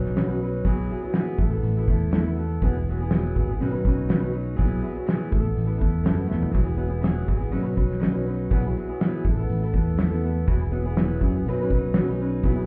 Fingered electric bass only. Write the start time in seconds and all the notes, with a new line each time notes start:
Already playing: B1
0.65 B1
1.39 A1
1.63 A1
1.88 E2
2.62 E1
3.37 G#1
3.61 B1
3.85 B1
4.59 B1
5.33 A1
5.57 A1
5.82 E2
6.08 F#2
6.32 E2
6.55 E1
7.29 G#1
7.54 B1
7.78 B1
8.51 B1
9.25 A1
9.50 A1
9.74 E2
10.48 E1
11.22 F#2
11.45 B1
11.71 B1
12.44 B1